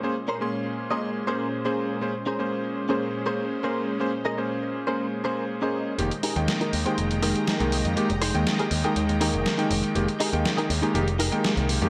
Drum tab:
HH |----------------|----------------|----------------|xxoxxxoxxxoxxxox|
SD |----------------|----------------|----------------|----o-------o---|

HH |xxoxxxoxxxoxxxox|xxoxxxoxxxoxxxox|
SD |----o-------o---|----o-------o---|